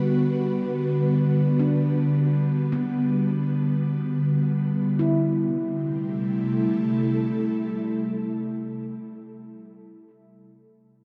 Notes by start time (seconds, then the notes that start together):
Already playing: D3 G3 B3 F#4 B4
1.59 D4
2.72 B3
4.97 C3 E4
5.15 G3
5.31 A3
5.49 E4
5.67 A4